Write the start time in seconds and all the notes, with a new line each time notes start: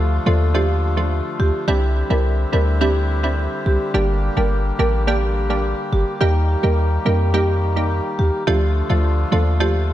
Already playing: D2 D3 F3 A3 D4 F4
0.26 D#2 F3 A3 D4 F4 A4
0.54 F3 A3 D4 F4 G4
0.97 F3 A3 D4 F4
1.40 D2 G4
1.68 C2 G3 C4 D4 E4 G4
2.10 C2 G3 C4 D4 E4 A#4
2.52 D2 G3 C4 D4 E4 A#4
2.81 G3 C4 D4 E4 G4
3.23 G3 C4 D4 E4
3.66 C2 G4
3.94 G1 G3 A#3 D4 G4
4.37 G1 G3 A#3 D4 G4 A#4
4.79 A1 G3 A#3 D4 G4 A#4
5.07 G3 A#3 D4 G4
5.50 G3 A#3 D4 G4
5.93 G1 G4
6.21 D#2 D#3 G3 A#3 D#4 G4
6.63 D#2 G3 A#3 D#4 G4 A#4
7.05 F2 G3 A#3 D#4 G4 A#4
7.34 G3 A#3 D#4 G4
7.76 G3 A#3 D#4 G4
8.19 D#2 G4
8.47 D2 D3 F3 A3 D4 F4 G4
8.89 D2 F3 A3 D4 F4 A4
9.32 D#2 F3 A3 D4 F4 A4
9.60 F3 A3 D4 F4 G4